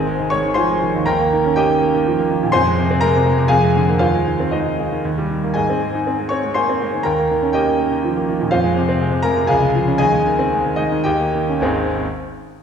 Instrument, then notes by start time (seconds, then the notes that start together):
grand piano
Already playing: G#1 D#3 G#3 C4 G#4 D#5 G#5
0.07 G#3
0.20 D#3
0.30 G#3 C#5 C#6
0.45 D#3
0.54 F3 C5 G#5 C6
0.70 G#3
0.83 D#3
0.96 D#2
1.06 D#2 A#4 G5 A#5
1.21 A#3
1.33 D#3
1.46 C#4
1.56 A#3 G4 D#5 G5
1.69 D#3
1.81 A#3
1.94 D#3
2.07 F3
2.19 A#3
2.31 D#3
2.43 A#2
2.52 F2 C5 G#5 C6
2.66 G#3
2.79 C3
2.91 C4
3.01 G#3 A#4 A#5
3.15 C3
3.26 G#3
3.38 C3
3.48 F2 G#4 F5 G#5
3.63 G#3
3.76 D3
3.89 A#3
3.99 D#2 F4 C5 F5
4.14 G#3
4.27 D#3
4.40 C4
4.51 G#3 D#4 C5 D#5
4.66 D#3
4.80 G#3
4.92 D#3
5.05 D#2
5.18 G3
5.30 D#3
5.43 A#3
5.54 G#2 G#4 D#5 G#5
5.70 C4
5.82 G#3
5.95 D#4
6.07 C4
6.19 G#3
6.29 C4 C#5 C#6
6.44 G#3
6.54 A#3 C5 G#5 C6
6.69 C4
6.82 G#3
6.94 D#3
7.03 D#2 A#4 G5 A#5
7.19 A#3
7.31 D#3
7.42 C#4
7.53 A#3 G4 D#5 G5
7.67 D#3
7.80 A#3
7.91 D#3
8.04 F3
8.17 A#3
8.28 D#3
8.41 A#2
8.51 F2 F4 C5 F5
8.64 G#3
8.77 C3
8.89 C4
9.01 G#3
9.12 C3
9.23 G#3 A#4 A#5
9.37 C3
9.47 C#2 G#4 F5 G#5
9.62 G#3
9.75 F3
9.88 C#4
9.98 D#2 G#4 D#5 G#5
10.13 G#3
10.26 D#3
10.39 C4
10.53 G#3
10.66 D#3
10.76 G#3 D#4 D#5
10.92 D#3
11.04 D#2 G4 D#5 G5
11.20 A#3
11.35 D#3
11.49 C#4
11.60 G#1 D#2 G#3 C4 D#4 G#4 G#5